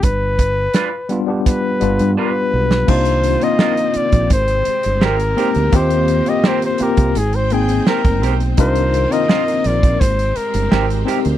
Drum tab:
CC |----------------|x---------------|----------------|----------------|
HH |x-x-x-x-x-xx----|-xxx-xxxxxxx-xxx|xxxx-xxxxxxx-xxx|xxxx-xxxxxxx-xxx|
SD |----o---o------o|----o-------o---|----o-------o---|----o---o---o---|
BD |o-o-----o-------|o------oo-------|o------o-----o--|o------oo-------|